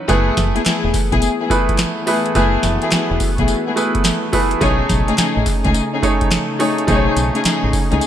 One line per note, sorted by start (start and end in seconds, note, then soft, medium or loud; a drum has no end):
0.00 0.11 E3 medium
0.00 0.11 F#3 medium
0.00 0.11 C#4 medium
0.00 0.11 D#4 medium
0.00 0.09 B4 loud
0.08 0.29 F#1 loud
0.08 4.58 E3 medium
0.08 0.80 A3 medium
0.08 0.28 A3 loud
0.08 8.07 A3 medium
0.08 0.28 B3 medium
0.08 4.58 B3 medium
0.08 0.80 E4 medium
0.08 0.28 E4 medium
0.08 0.80 G#4 medium
0.08 0.28 G#4 loud
0.08 2.33 G#4 medium
0.08 0.81 B4 loud
0.08 kick loud
0.08 closed hi-hat medium
0.08 tambourine medium
0.37 0.51 F#1 loud
0.37 kick medium
0.37 snare medium
0.37 closed hi-hat medium
0.37 tambourine medium
0.55 0.64 A3 medium
0.55 0.64 B3 medium
0.55 0.64 E4 medium
0.55 0.64 G#4 medium
0.55 closed hi-hat medium
0.65 0.84 A3 medium
0.65 0.84 B3 medium
0.65 0.84 E4 medium
0.65 0.84 G#4 medium
0.65 muted fingered electric bass stroke soft
0.65 snare loud
0.65 clap medium
0.65 closed hi-hat medium
0.65 tambourine medium
0.84 0.91 E1 medium
0.94 kick loud
0.94 clap medium
0.94 open hi-hat medium
0.94 tambourine medium
1.11 1.19 B1 medium
1.11 1.23 A3 medium
1.11 1.23 B3 medium
1.11 1.23 E4 medium
1.11 1.23 G#4 loud
1.11 kick loud
1.11 closed hi-hat medium
1.22 closed hi-hat medium
1.22 tambourine medium
1.40 1.51 A3 medium
1.40 1.51 B3 medium
1.40 1.51 E4 medium
1.40 1.52 G#4 medium
1.50 1.86 A3 medium
1.50 1.86 E4 medium
1.50 1.86 G#4 medium
1.50 1.86 B4 medium
1.50 kick loud
1.50 closed hi-hat medium
1.50 tambourine medium
1.69 kick medium
1.69 closed hi-hat medium
1.78 snare loud
1.78 clap loud
1.78 closed hi-hat medium
1.78 tambourine loud
2.07 2.27 A3 medium
2.07 2.26 A3 medium
2.07 2.26 B3 medium
2.07 2.27 E4 medium
2.07 2.26 E4 medium
2.07 2.28 G#4 medium
2.07 2.26 G#4 medium
2.07 2.28 B4 medium
2.07 open hi-hat medium
2.26 closed hi-hat medium
2.35 2.56 F#1 loud
2.35 3.07 A3 medium
2.35 2.54 A3 medium
2.35 2.54 B3 medium
2.35 3.07 E4 medium
2.35 2.54 E4 medium
2.35 4.59 F#4 medium
2.35 3.07 G#4 medium
2.35 2.55 G#4 loud
2.35 3.07 B4 loud
2.35 kick loud
2.35 closed hi-hat medium
2.35 tambourine medium
2.63 2.77 F#1 loud
2.63 snare medium
2.63 closed hi-hat medium
2.63 tambourine medium
2.82 2.91 A3 medium
2.82 2.91 B3 medium
2.82 2.91 E4 medium
2.82 2.91 G#4 medium
2.82 closed hi-hat medium
2.91 3.11 A3 medium
2.91 3.11 B3 medium
2.91 3.11 E4 medium
2.91 3.11 G#4 medium
2.91 muted fingered electric bass stroke soft
2.91 snare loud
2.91 clap medium
2.91 closed hi-hat medium
2.91 tambourine loud
3.11 3.18 E1 medium
3.20 kick loud
3.20 open hi-hat medium
3.20 tambourine medium
3.38 3.46 B1 loud
3.38 3.49 A3 medium
3.38 3.50 B3 medium
3.38 3.50 E4 medium
3.38 3.50 G#4 medium
3.38 kick loud
3.38 closed hi-hat medium
3.48 closed hi-hat medium
3.48 tambourine medium
3.67 3.78 A3 medium
3.67 3.78 B3 medium
3.67 3.78 E4 medium
3.67 3.78 G#4 medium
3.76 4.12 A3 medium
3.76 4.12 E4 medium
3.76 4.12 G#4 medium
3.76 4.13 B4 medium
3.76 closed hi-hat medium
3.76 tambourine medium
3.95 kick loud
3.95 closed hi-hat medium
4.04 snare loud
4.04 clap loud
4.04 closed hi-hat medium
4.04 tambourine loud
4.33 4.53 A3 medium
4.33 4.53 E4 medium
4.33 4.54 G#4 medium
4.33 4.54 B4 loud
4.33 kick medium
4.33 open hi-hat medium
4.51 closed hi-hat medium
4.61 4.82 B1 loud
4.61 8.07 C#3 medium
4.61 5.33 A3 medium
4.61 4.80 A3 medium
4.61 4.80 C#4 medium
4.61 5.33 D#4 medium
4.61 4.80 D#4 medium
4.61 8.07 D#4 medium
4.61 8.07 G#4 medium
4.61 4.81 G#4 loud
4.61 5.33 G#4 medium
4.61 5.33 C#5 loud
4.61 kick loud
4.61 closed hi-hat medium
4.61 tambourine medium
4.89 5.03 B1 loud
4.89 kick medium
4.89 snare medium
4.89 closed hi-hat medium
4.89 tambourine medium
5.08 5.16 A3 medium
5.08 5.17 C#4 medium
5.08 5.17 D#4 medium
5.08 5.17 G#4 medium
5.08 closed hi-hat medium
5.18 5.37 A3 medium
5.18 5.37 C#4 medium
5.18 5.37 D#4 medium
5.18 5.37 G#4 medium
5.18 muted fingered electric bass stroke medium
5.18 snare loud
5.18 clap medium
5.18 closed hi-hat medium
5.18 tambourine loud
5.37 5.44 A1 medium
5.46 kick loud
5.46 clap medium
5.46 open hi-hat medium
5.46 tambourine medium
5.65 5.72 C#2 loud
5.65 5.76 A3 medium
5.65 5.76 C#4 medium
5.65 5.76 D#4 medium
5.65 5.76 G#4 loud
5.65 kick loud
5.65 closed hi-hat medium
5.75 closed hi-hat medium
5.75 tambourine medium
5.93 6.04 A3 medium
5.93 6.04 C#4 medium
5.93 6.04 D#4 medium
5.93 6.04 G#4 medium
6.02 6.39 A3 medium
6.02 6.39 D#4 medium
6.02 6.39 G#4 medium
6.02 6.39 C#5 medium
6.02 kick loud
6.02 closed hi-hat medium
6.02 tambourine medium
6.21 kick loud
6.21 closed hi-hat medium
6.31 snare loud
6.31 clap medium
6.31 closed hi-hat medium
6.31 tambourine loud
6.59 6.80 A3 medium
6.59 6.79 A3 medium
6.59 6.79 C#4 medium
6.59 6.80 D#4 medium
6.59 6.79 D#4 medium
6.59 6.80 G#4 medium
6.59 6.79 G#4 medium
6.59 6.80 C#5 medium
6.59 open hi-hat medium
6.78 closed hi-hat medium
6.87 7.09 B1 loud
6.87 7.59 A3 medium
6.87 7.07 A3 loud
6.87 7.07 C#4 medium
6.87 7.60 D#4 medium
6.87 7.07 D#4 medium
6.87 7.60 G#4 medium
6.87 7.07 G#4 loud
6.87 6.97 C5 medium
6.87 kick loud
6.87 closed hi-hat medium
6.87 tambourine medium
6.95 7.63 C#5 loud
7.17 7.30 B1 medium
7.17 closed hi-hat medium
7.17 tambourine medium
7.34 7.43 A3 medium
7.34 7.44 C#4 medium
7.34 7.44 D#4 medium
7.34 7.44 G#4 medium
7.34 closed hi-hat soft
7.44 7.64 A3 medium
7.44 7.64 C#4 medium
7.44 7.64 D#4 medium
7.44 7.64 G#4 medium
7.44 muted fingered electric bass stroke medium
7.44 snare loud
7.44 clap medium
7.44 closed hi-hat medium
7.44 tambourine medium
7.64 7.71 A1 loud
7.73 kick loud
7.73 open hi-hat medium
7.73 tambourine medium
7.91 7.99 C#2 medium
7.91 8.02 A3 medium
7.91 8.02 C#4 medium
7.91 8.02 D#4 medium
7.91 8.02 G#4 medium
7.91 closed hi-hat medium
8.01 closed hi-hat medium
8.01 tambourine medium